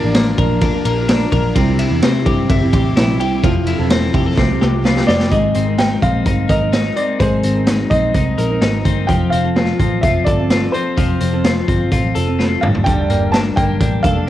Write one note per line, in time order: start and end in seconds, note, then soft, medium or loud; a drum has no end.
0.00 0.33 A1 medium
0.00 0.14 A#3 medium
0.00 1.52 A#3 medium
0.00 0.60 D4 medium
0.00 1.51 D4 medium
0.00 0.38 D4 medium
0.00 1.52 F4 medium
0.00 0.37 A#4 medium
0.00 0.38 A#4 medium
0.00 0.34 D5 medium
0.04 0.36 F3 soft
0.04 0.37 A#3 medium
0.14 1.61 A#3 medium
0.14 snare loud
0.14 ride medium
0.38 0.68 A#1 loud
0.38 0.73 F3 medium
0.38 0.73 A#3 medium
0.38 0.72 D4 medium
0.38 0.84 A#4 medium
0.38 0.72 A#4 medium
0.38 kick medium
0.38 ride soft
0.61 1.07 D4 medium
0.61 kick medium
0.61 ride medium
0.73 1.07 F3 medium
0.73 1.08 A#3 medium
0.73 1.08 D4 medium
0.73 1.09 A#4 medium
0.85 1.25 A#1 loud
0.85 1.31 A#4 medium
0.85 ride medium
1.08 1.30 F3 medium
1.08 1.31 A#3 medium
1.08 1.60 D4 medium
1.08 1.31 D4 medium
1.08 1.32 A#4 medium
1.08 snare loud
1.08 ride medium
1.31 1.52 A#1 medium
1.31 1.55 F3 medium
1.31 1.55 A#3 medium
1.31 1.56 D4 medium
1.31 1.60 A#4 medium
1.31 1.56 A#4 medium
1.31 kick medium
1.31 ride medium
1.55 1.86 C2 loud
1.55 1.91 C3 medium
1.55 3.44 C3 medium
1.55 3.42 C3 medium
1.55 1.91 G3 medium
1.55 1.91 C4 loud
1.55 5.28 C4 medium
1.55 1.91 E4 loud
1.55 4.35 E4 medium
1.55 3.42 G4 medium
1.55 1.90 G4 medium
1.55 kick loud
1.55 ride medium
1.79 2.49 E4 medium
1.79 ride medium
1.91 2.01 E2 medium
1.91 2.25 C4 medium
1.91 2.25 E4 medium
1.91 2.26 G4 medium
2.02 2.23 C3 loud
2.02 3.91 C4 medium
2.02 snare loud
2.02 ride medium
2.25 2.46 G2 medium
2.25 2.61 G3 medium
2.25 2.61 C4 medium
2.25 2.61 E4 medium
2.25 2.72 G4 medium
2.25 2.60 G4 medium
2.25 kick medium
2.25 ride medium
2.50 2.70 G1 loud
2.50 2.95 E4 medium
2.50 kick loud
2.50 ride medium
2.61 2.96 C4 soft
2.61 2.96 E4 medium
2.61 2.96 G4 medium
2.73 2.93 A1 medium
2.73 3.19 G4 medium
2.73 kick loud
2.73 ride medium
2.96 3.20 A#1 medium
2.96 3.18 G3 medium
2.96 3.19 C4 medium
2.96 3.48 E4 medium
2.96 3.20 E4 medium
2.96 3.20 G4 medium
2.96 snare loud
2.96 ride medium
3.19 3.40 C2 medium
3.19 3.43 G3 medium
3.19 3.42 C4 medium
3.19 3.43 E4 medium
3.19 3.49 G4 medium
3.19 3.44 G4 medium
3.19 ride medium
3.43 3.74 F1 loud
3.43 3.79 F3 medium
3.43 4.43 F3 medium
3.43 4.37 F3 medium
3.43 3.79 C4 medium
3.43 3.79 E4 loud
3.43 4.37 A4 medium
3.43 3.78 A4 loud
3.43 kick medium
3.43 ride medium
3.67 4.43 E4 medium
3.67 ride medium
3.79 4.09 E1 medium
3.79 4.13 C4 medium
3.79 4.14 E4 medium
3.79 4.14 A4 medium
3.90 5.55 C4 medium
3.90 snare loud
3.90 ride medium
4.13 4.34 F1 medium
4.13 4.36 F3 medium
4.13 4.36 C4 medium
4.13 4.38 E4 medium
4.13 4.26 G4 medium
4.13 4.38 A4 medium
4.13 kick loud
4.13 ride medium
4.26 4.43 A4 medium
4.37 4.58 C2 loud
4.37 4.49 C3 medium
4.37 5.31 C3 medium
4.37 5.37 C3 medium
4.37 4.49 F3 medium
4.37 4.49 C4 medium
4.37 5.31 F4 medium
4.37 4.49 F4 medium
4.37 5.31 G4 medium
4.37 4.48 G4 medium
4.37 kick loud
4.37 snare medium
4.49 4.83 C4 soft
4.49 4.84 F4 medium
4.49 4.84 G4 medium
4.61 5.02 C2 loud
4.61 5.07 G4 medium
4.61 snare medium
4.84 5.06 F3 medium
4.84 5.07 C4 medium
4.84 5.07 F4 medium
4.84 5.37 F4 medium
4.84 5.08 G4 medium
4.84 snare medium
4.97 snare medium
5.07 5.29 F1 medium
5.07 5.31 F3 medium
5.07 5.30 C4 medium
5.07 5.32 F4 medium
5.07 5.37 G4 medium
5.07 5.32 G4 medium
5.07 5.32 D5 medium
5.07 snare loud
5.20 snare loud
5.31 5.52 G#1 loud
5.31 5.67 G#3 medium
5.31 7.19 G#3 medium
5.31 5.67 C4 medium
5.31 5.66 D#4 medium
5.31 5.64 A#4 medium
5.31 5.80 D#5 medium
5.31 kick medium
5.31 closed hi-hat medium
5.54 5.96 G#1 medium
5.54 6.02 C4 medium
5.54 closed hi-hat medium
5.66 6.00 C4 soft
5.66 6.01 D#4 soft
5.66 6.01 A#4 medium
5.78 6.25 D#4 medium
5.78 6.01 G5 medium
5.78 snare loud
5.78 closed hi-hat medium
6.01 6.23 A#1 medium
6.01 6.47 G#3 medium
6.01 6.49 C4 medium
6.01 6.96 C4 medium
6.01 6.48 D#4 medium
6.01 6.49 A#4 medium
6.01 6.51 F5 medium
6.01 kick medium
6.01 closed hi-hat medium
6.25 6.46 G1 medium
6.25 6.71 D#4 medium
6.25 kick medium
6.25 closed hi-hat medium
6.48 6.90 G#1 medium
6.48 6.61 G#3 medium
6.48 6.61 C4 medium
6.48 6.60 D#4 medium
6.48 8.37 A#4 medium
6.48 6.59 A#4 medium
6.48 6.98 D#5 loud
6.48 kick medium
6.48 closed hi-hat medium
6.60 6.95 C4 soft
6.60 6.96 D#4 soft
6.60 6.96 A#4 soft
6.73 7.66 D#4 medium
6.73 snare loud
6.73 closed hi-hat medium
6.95 7.18 G#3 medium
6.95 7.19 C4 medium
6.95 7.44 C4 medium
6.95 7.19 D#4 medium
6.95 7.20 A#4 medium
6.95 7.21 D5 medium
6.95 closed hi-hat medium
7.20 7.40 G#1 loud
7.20 7.55 G#3 medium
7.20 9.08 G#3 medium
7.20 7.56 C4 medium
7.20 7.55 D#4 medium
7.20 7.54 A#4 medium
7.20 7.64 C5 medium
7.20 kick medium
7.20 closed hi-hat medium
7.43 7.84 G#1 medium
7.43 7.91 C4 medium
7.43 closed hi-hat medium
7.55 7.90 C4 soft
7.55 7.91 D#4 medium
7.55 7.91 A#4 medium
7.67 8.13 D#4 medium
7.67 snare loud
7.67 closed hi-hat medium
7.90 8.11 A#1 medium
7.90 8.37 G#3 medium
7.90 8.85 C4 medium
7.90 8.38 C4 medium
7.90 8.38 D#4 medium
7.90 8.39 A#4 medium
7.90 8.81 D#5 loud
7.90 kick medium
7.90 closed hi-hat medium
8.14 8.35 C2 medium
8.14 8.60 D#4 medium
8.14 kick medium
8.14 closed hi-hat medium
8.38 8.58 A#1 medium
8.38 8.50 G#3 medium
8.38 8.50 C4 medium
8.38 8.49 D#4 medium
8.38 9.14 A#4 medium
8.38 8.48 A#4 medium
8.38 closed hi-hat medium
8.49 8.85 C4 soft
8.49 8.86 D#4 medium
8.49 8.85 A#4 medium
8.61 8.82 G#1 medium
8.61 9.14 D#4 medium
8.61 snare loud
8.61 closed hi-hat medium
8.85 9.05 G1 medium
8.85 9.09 G#3 medium
8.85 9.32 C4 medium
8.85 9.08 C4 medium
8.85 9.10 D#4 medium
8.85 9.10 A#4 medium
8.85 kick medium
8.85 closed hi-hat medium
9.07 9.29 F1 loud
9.07 10.96 F3 medium
9.07 9.45 F3 medium
9.07 9.45 C4 medium
9.07 9.44 F4 medium
9.07 9.43 A4 medium
9.07 9.30 G5 medium
9.07 kick medium
9.07 closed hi-hat medium
9.30 9.73 F1 medium
9.30 9.79 C4 medium
9.30 10.04 F5 medium
9.30 closed hi-hat medium
9.44 9.79 C4 soft
9.44 9.79 F4 medium
9.44 9.80 A4 medium
9.56 10.02 F4 medium
9.56 snare loud
9.56 closed hi-hat medium
9.79 10.00 A1 medium
9.79 10.25 F3 medium
9.79 10.73 C4 medium
9.79 10.25 C4 medium
9.79 10.26 F4 medium
9.79 10.27 A4 medium
9.79 kick medium
9.79 closed hi-hat medium
10.01 10.23 F1 medium
10.01 10.49 F4 medium
10.01 10.27 E5 medium
10.01 kick medium
10.01 closed hi-hat medium
10.25 10.67 G1 medium
10.25 10.38 F3 medium
10.25 10.39 C4 medium
10.25 10.38 F4 medium
10.25 12.15 A4 medium
10.25 10.37 A4 medium
10.25 10.74 D5 medium
10.25 kick medium
10.25 closed hi-hat medium
10.39 10.73 C4 soft
10.39 10.74 F4 soft
10.39 10.74 A4 medium
10.50 11.44 F4 medium
10.50 snare loud
10.50 closed hi-hat medium
10.72 10.96 F3 medium
10.72 10.97 C4 medium
10.72 11.19 C4 medium
10.72 10.97 F4 medium
10.72 10.97 A4 medium
10.72 12.67 C5 medium
10.72 closed hi-hat medium
10.97 11.18 F1 medium
10.97 12.67 F3 medium
10.97 11.33 F3 medium
10.97 11.33 C4 medium
10.97 11.33 F4 medium
10.97 11.32 A4 medium
10.97 kick medium
10.97 closed hi-hat medium
11.20 11.61 F1 medium
11.20 11.67 C4 medium
11.20 closed hi-hat medium
11.33 11.67 C4 soft
11.33 11.68 F4 medium
11.33 11.68 A4 medium
11.44 11.91 F4 medium
11.44 snare loud
11.44 closed hi-hat medium
11.68 11.88 G1 medium
11.68 12.14 F3 medium
11.68 12.67 C4 medium
11.68 12.14 C4 medium
11.68 12.15 F4 medium
11.68 12.16 A4 medium
11.68 kick medium
11.68 closed hi-hat medium
11.91 12.12 A1 medium
11.91 12.38 F4 medium
11.91 kick medium
11.91 closed hi-hat medium
12.15 12.56 F1 medium
12.15 12.27 F3 medium
12.15 12.27 C4 medium
12.15 12.26 F4 medium
12.15 12.89 A4 medium
12.15 12.25 A4 medium
12.15 closed hi-hat medium
12.27 12.63 C4 soft
12.27 12.63 F4 medium
12.27 12.62 A4 medium
12.39 12.67 F4 medium
12.39 snare medium
12.61 13.03 G1 medium
12.61 12.85 G2 medium
12.61 12.85 G3 medium
12.61 12.85 A#3 medium
12.61 12.86 D4 medium
12.61 12.86 A4 medium
12.61 12.67 F5 medium
12.61 mid tom medium
12.75 floor tom medium
12.84 13.21 G2 medium
12.84 14.29 G2 medium
12.84 13.21 D3 medium
12.84 13.21 G3 medium
12.84 13.21 A#3 medium
12.84 13.20 D4 medium
12.84 13.20 A4 medium
12.84 13.34 G5 medium
12.84 kick medium
12.84 closed hi-hat medium
13.10 13.50 G1 medium
13.10 13.56 A#3 medium
13.10 closed hi-hat medium
13.21 13.56 G3 soft
13.21 13.56 A#3 soft
13.21 13.57 D4 soft
13.21 13.56 A4 medium
13.32 13.79 D4 medium
13.32 13.37 A5 loud
13.32 snare loud
13.32 closed hi-hat medium
13.56 13.77 G1 medium
13.56 14.04 G3 medium
13.56 14.29 A#3 medium
13.56 14.04 A#3 medium
13.56 14.04 D4 medium
13.56 14.05 A4 medium
13.56 14.05 G5 medium
13.56 kick medium
13.56 closed hi-hat medium
13.80 14.01 A1 medium
13.80 14.26 D4 medium
13.80 kick medium
13.80 closed hi-hat medium
14.03 14.29 F1 medium
14.03 14.16 G3 medium
14.03 14.16 A#3 medium
14.03 14.15 D4 medium
14.03 14.29 A4 medium
14.03 14.14 A4 medium
14.03 14.29 F5 loud
14.03 kick medium
14.03 closed hi-hat medium
14.16 14.29 G3 soft
14.16 14.29 A#3 soft
14.16 14.29 D4 soft
14.16 14.29 A4 medium